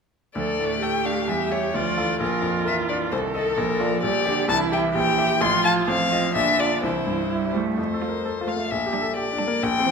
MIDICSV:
0, 0, Header, 1, 5, 480
1, 0, Start_track
1, 0, Key_signature, -1, "minor"
1, 0, Tempo, 460123
1, 377, Time_signature, 2, 2, 24, 8
1, 4209, Key_signature, -1, "major"
1, 6129, Tempo, 476190
1, 8049, Tempo, 461894
1, 10266, End_track
2, 0, Start_track
2, 0, Title_t, "Violin"
2, 0, Program_c, 0, 40
2, 376, Note_on_c, 0, 74, 55
2, 866, Note_on_c, 0, 79, 64
2, 882, Note_off_c, 0, 74, 0
2, 1103, Note_on_c, 0, 77, 53
2, 1118, Note_off_c, 0, 79, 0
2, 1346, Note_on_c, 0, 76, 53
2, 1361, Note_off_c, 0, 77, 0
2, 1584, Note_on_c, 0, 73, 53
2, 1599, Note_off_c, 0, 76, 0
2, 1830, Note_on_c, 0, 74, 59
2, 1846, Note_off_c, 0, 73, 0
2, 2304, Note_off_c, 0, 74, 0
2, 2310, Note_on_c, 0, 70, 54
2, 2774, Note_off_c, 0, 70, 0
2, 2787, Note_on_c, 0, 76, 68
2, 2870, Note_off_c, 0, 76, 0
2, 3015, Note_on_c, 0, 74, 49
2, 3098, Note_off_c, 0, 74, 0
2, 3253, Note_on_c, 0, 72, 60
2, 3336, Note_off_c, 0, 72, 0
2, 3495, Note_on_c, 0, 69, 59
2, 3733, Note_on_c, 0, 70, 66
2, 3749, Note_off_c, 0, 69, 0
2, 4195, Note_off_c, 0, 70, 0
2, 4201, Note_on_c, 0, 74, 65
2, 4673, Note_off_c, 0, 74, 0
2, 4684, Note_on_c, 0, 81, 88
2, 4768, Note_off_c, 0, 81, 0
2, 4930, Note_on_c, 0, 79, 60
2, 5013, Note_off_c, 0, 79, 0
2, 5168, Note_on_c, 0, 79, 76
2, 5651, Note_on_c, 0, 84, 85
2, 5666, Note_off_c, 0, 79, 0
2, 5885, Note_off_c, 0, 84, 0
2, 5891, Note_on_c, 0, 81, 78
2, 5975, Note_off_c, 0, 81, 0
2, 6133, Note_on_c, 0, 77, 76
2, 6599, Note_off_c, 0, 77, 0
2, 6612, Note_on_c, 0, 76, 73
2, 6860, Note_on_c, 0, 74, 66
2, 6876, Note_off_c, 0, 76, 0
2, 7095, Note_off_c, 0, 74, 0
2, 7103, Note_on_c, 0, 72, 53
2, 7805, Note_off_c, 0, 72, 0
2, 8053, Note_on_c, 0, 72, 50
2, 8777, Note_on_c, 0, 77, 56
2, 8792, Note_off_c, 0, 72, 0
2, 9011, Note_on_c, 0, 76, 58
2, 9026, Note_off_c, 0, 77, 0
2, 9485, Note_off_c, 0, 76, 0
2, 9490, Note_on_c, 0, 74, 66
2, 9977, Note_on_c, 0, 79, 78
2, 9992, Note_off_c, 0, 74, 0
2, 10266, Note_off_c, 0, 79, 0
2, 10266, End_track
3, 0, Start_track
3, 0, Title_t, "Grand piano"
3, 0, Program_c, 1, 0
3, 369, Note_on_c, 1, 38, 40
3, 596, Control_c, 1, 64, 127
3, 619, Note_on_c, 1, 45, 29
3, 857, Note_on_c, 1, 69, 32
3, 1004, Note_off_c, 1, 45, 0
3, 1101, Note_on_c, 1, 62, 31
3, 1242, Note_off_c, 1, 69, 0
3, 1307, Note_off_c, 1, 38, 0
3, 1332, Note_on_c, 1, 40, 38
3, 1341, Note_off_c, 1, 62, 0
3, 1362, Control_c, 1, 64, 0
3, 1535, Control_c, 1, 64, 127
3, 1570, Note_on_c, 1, 67, 30
3, 1574, Note_on_c, 1, 76, 32
3, 1791, Note_off_c, 1, 67, 0
3, 1793, Note_off_c, 1, 76, 0
3, 1802, Note_off_c, 1, 40, 0
3, 1815, Note_on_c, 1, 38, 42
3, 1842, Control_c, 1, 64, 0
3, 1987, Control_c, 1, 64, 127
3, 2055, Note_on_c, 1, 69, 30
3, 2059, Note_on_c, 1, 77, 31
3, 2274, Note_off_c, 1, 69, 0
3, 2276, Note_off_c, 1, 77, 0
3, 2284, Note_off_c, 1, 38, 0
3, 2296, Note_on_c, 1, 34, 42
3, 2321, Control_c, 1, 64, 0
3, 2496, Control_c, 1, 64, 127
3, 2519, Note_on_c, 1, 41, 30
3, 2767, Note_on_c, 1, 70, 36
3, 2911, Note_off_c, 1, 41, 0
3, 3016, Note_on_c, 1, 62, 32
3, 3154, Note_off_c, 1, 70, 0
3, 3224, Note_off_c, 1, 34, 0
3, 3255, Note_off_c, 1, 62, 0
3, 3258, Note_on_c, 1, 36, 43
3, 3275, Control_c, 1, 64, 0
3, 3464, Control_c, 1, 64, 127
3, 3484, Note_on_c, 1, 69, 34
3, 3491, Note_on_c, 1, 75, 38
3, 3703, Note_off_c, 1, 69, 0
3, 3706, Note_off_c, 1, 75, 0
3, 3719, Note_off_c, 1, 36, 0
3, 3728, Note_on_c, 1, 34, 47
3, 3751, Control_c, 1, 64, 0
3, 3932, Control_c, 1, 64, 127
3, 3962, Note_on_c, 1, 65, 35
3, 3962, Note_on_c, 1, 74, 38
3, 4181, Note_off_c, 1, 65, 0
3, 4181, Note_off_c, 1, 74, 0
3, 4189, Note_off_c, 1, 34, 0
3, 4204, Note_on_c, 1, 34, 49
3, 4230, Control_c, 1, 64, 0
3, 4398, Control_c, 1, 64, 127
3, 4440, Note_on_c, 1, 67, 36
3, 4447, Note_on_c, 1, 74, 39
3, 4658, Note_off_c, 1, 67, 0
3, 4662, Note_off_c, 1, 74, 0
3, 4669, Note_off_c, 1, 34, 0
3, 4676, Note_on_c, 1, 36, 54
3, 4707, Control_c, 1, 64, 0
3, 4894, Control_c, 1, 64, 127
3, 4922, Note_on_c, 1, 67, 40
3, 4928, Note_on_c, 1, 76, 43
3, 5139, Note_off_c, 1, 67, 0
3, 5143, Note_off_c, 1, 76, 0
3, 5146, Note_off_c, 1, 36, 0
3, 5163, Note_on_c, 1, 34, 51
3, 5184, Control_c, 1, 64, 0
3, 5350, Control_c, 1, 64, 127
3, 5402, Note_on_c, 1, 67, 37
3, 5405, Note_on_c, 1, 76, 43
3, 5620, Note_off_c, 1, 67, 0
3, 5621, Note_off_c, 1, 76, 0
3, 5630, Note_off_c, 1, 34, 0
3, 5640, Note_on_c, 1, 33, 57
3, 5664, Control_c, 1, 64, 0
3, 5852, Control_c, 1, 64, 127
3, 5892, Note_on_c, 1, 65, 38
3, 5898, Note_on_c, 1, 77, 44
3, 6108, Note_off_c, 1, 65, 0
3, 6112, Note_off_c, 1, 33, 0
3, 6112, Note_off_c, 1, 77, 0
3, 6127, Note_on_c, 1, 33, 51
3, 6147, Control_c, 1, 64, 0
3, 6297, Control_c, 1, 64, 127
3, 6371, Note_on_c, 1, 65, 38
3, 6376, Note_on_c, 1, 75, 40
3, 6585, Note_off_c, 1, 65, 0
3, 6587, Note_off_c, 1, 75, 0
3, 6591, Note_off_c, 1, 33, 0
3, 6607, Note_on_c, 1, 34, 50
3, 6628, Control_c, 1, 64, 0
3, 6803, Control_c, 1, 64, 127
3, 6848, Note_on_c, 1, 65, 34
3, 6851, Note_on_c, 1, 74, 37
3, 7065, Note_off_c, 1, 65, 0
3, 7067, Note_off_c, 1, 74, 0
3, 7074, Note_off_c, 1, 34, 0
3, 7091, Note_on_c, 1, 36, 45
3, 7110, Control_c, 1, 64, 0
3, 7270, Control_c, 1, 64, 127
3, 7329, Note_on_c, 1, 43, 32
3, 7565, Note_on_c, 1, 64, 34
3, 7715, Note_off_c, 1, 43, 0
3, 7808, Note_on_c, 1, 55, 32
3, 7951, Note_off_c, 1, 64, 0
3, 8022, Note_off_c, 1, 36, 0
3, 8044, Note_on_c, 1, 41, 38
3, 8047, Note_off_c, 1, 55, 0
3, 8067, Control_c, 1, 64, 0
3, 8211, Note_on_c, 1, 69, 31
3, 8264, Control_c, 1, 64, 127
3, 8368, Note_on_c, 1, 70, 28
3, 8470, Note_off_c, 1, 69, 0
3, 8532, Note_off_c, 1, 70, 0
3, 8539, Note_on_c, 1, 69, 34
3, 8703, Note_on_c, 1, 65, 32
3, 8792, Note_off_c, 1, 69, 0
3, 8863, Note_on_c, 1, 57, 31
3, 8953, Note_off_c, 1, 65, 0
3, 8980, Note_off_c, 1, 41, 0
3, 9016, Note_off_c, 1, 57, 0
3, 9019, Note_on_c, 1, 34, 42
3, 9029, Control_c, 1, 64, 0
3, 9176, Note_on_c, 1, 67, 34
3, 9200, Control_c, 1, 64, 127
3, 9329, Note_on_c, 1, 69, 31
3, 9425, Note_off_c, 1, 67, 0
3, 9487, Note_off_c, 1, 69, 0
3, 9490, Note_on_c, 1, 67, 38
3, 9658, Note_on_c, 1, 62, 36
3, 9742, Note_off_c, 1, 67, 0
3, 9810, Note_on_c, 1, 58, 39
3, 9907, Note_off_c, 1, 62, 0
3, 9941, Note_off_c, 1, 34, 0
3, 9968, Note_off_c, 1, 58, 0
3, 9968, Note_on_c, 1, 34, 52
3, 9987, Control_c, 1, 64, 0
3, 10138, Note_on_c, 1, 60, 41
3, 10153, Control_c, 1, 64, 127
3, 10266, Note_off_c, 1, 34, 0
3, 10266, Note_off_c, 1, 60, 0
3, 10266, End_track
4, 0, Start_track
4, 0, Title_t, "Viola"
4, 0, Program_c, 2, 41
4, 375, Note_on_c, 2, 69, 45
4, 827, Note_off_c, 2, 69, 0
4, 855, Note_on_c, 2, 67, 47
4, 1825, Note_on_c, 2, 65, 46
4, 1841, Note_off_c, 2, 67, 0
4, 2301, Note_off_c, 2, 65, 0
4, 2307, Note_on_c, 2, 65, 46
4, 3254, Note_on_c, 2, 69, 52
4, 3270, Note_off_c, 2, 65, 0
4, 4209, Note_off_c, 2, 69, 0
4, 4213, Note_on_c, 2, 67, 51
4, 4687, Note_on_c, 2, 64, 59
4, 4703, Note_off_c, 2, 67, 0
4, 5154, Note_off_c, 2, 64, 0
4, 5161, Note_on_c, 2, 67, 55
4, 5651, Note_on_c, 2, 65, 61
4, 5667, Note_off_c, 2, 67, 0
4, 6131, Note_on_c, 2, 60, 54
4, 6146, Note_off_c, 2, 65, 0
4, 6597, Note_off_c, 2, 60, 0
4, 6603, Note_on_c, 2, 62, 51
4, 7092, Note_on_c, 2, 64, 42
4, 7107, Note_off_c, 2, 62, 0
4, 7813, Note_off_c, 2, 64, 0
4, 8294, Note_on_c, 2, 65, 36
4, 8473, Note_off_c, 2, 65, 0
4, 8776, Note_on_c, 2, 65, 41
4, 8952, Note_off_c, 2, 65, 0
4, 9249, Note_on_c, 2, 62, 39
4, 9425, Note_off_c, 2, 62, 0
4, 9718, Note_on_c, 2, 62, 45
4, 9900, Note_off_c, 2, 62, 0
4, 10210, Note_on_c, 2, 60, 52
4, 10266, Note_off_c, 2, 60, 0
4, 10266, End_track
5, 0, Start_track
5, 0, Title_t, "Cello"
5, 0, Program_c, 3, 42
5, 372, Note_on_c, 3, 53, 42
5, 455, Note_off_c, 3, 53, 0
5, 621, Note_on_c, 3, 57, 37
5, 1339, Note_on_c, 3, 55, 38
5, 1355, Note_off_c, 3, 57, 0
5, 1813, Note_on_c, 3, 53, 41
5, 1829, Note_off_c, 3, 55, 0
5, 2063, Note_on_c, 3, 52, 43
5, 2078, Note_off_c, 3, 53, 0
5, 2288, Note_off_c, 3, 52, 0
5, 2294, Note_on_c, 3, 53, 39
5, 2776, Note_on_c, 3, 52, 39
5, 2791, Note_off_c, 3, 53, 0
5, 3261, Note_on_c, 3, 51, 42
5, 3277, Note_off_c, 3, 52, 0
5, 3741, Note_on_c, 3, 53, 46
5, 3756, Note_off_c, 3, 51, 0
5, 3965, Note_off_c, 3, 53, 0
5, 3971, Note_on_c, 3, 53, 48
5, 4205, Note_off_c, 3, 53, 0
5, 4214, Note_on_c, 3, 55, 49
5, 4298, Note_off_c, 3, 55, 0
5, 4446, Note_on_c, 3, 50, 51
5, 4690, Note_on_c, 3, 52, 51
5, 4706, Note_off_c, 3, 50, 0
5, 5655, Note_on_c, 3, 53, 51
5, 5670, Note_off_c, 3, 52, 0
5, 6128, Note_off_c, 3, 53, 0
5, 6134, Note_on_c, 3, 53, 49
5, 6621, Note_on_c, 3, 50, 48
5, 6636, Note_off_c, 3, 53, 0
5, 7086, Note_on_c, 3, 52, 42
5, 7101, Note_off_c, 3, 50, 0
5, 7523, Note_off_c, 3, 52, 0
5, 7575, Note_on_c, 3, 55, 45
5, 7813, Note_on_c, 3, 57, 46
5, 7828, Note_off_c, 3, 55, 0
5, 8050, Note_off_c, 3, 57, 0
5, 8293, Note_on_c, 3, 57, 37
5, 8473, Note_off_c, 3, 57, 0
5, 8763, Note_on_c, 3, 57, 40
5, 8945, Note_off_c, 3, 57, 0
5, 9235, Note_on_c, 3, 55, 42
5, 9418, Note_off_c, 3, 55, 0
5, 9716, Note_on_c, 3, 55, 48
5, 9899, Note_off_c, 3, 55, 0
5, 10192, Note_on_c, 3, 52, 54
5, 10266, Note_off_c, 3, 52, 0
5, 10266, End_track
0, 0, End_of_file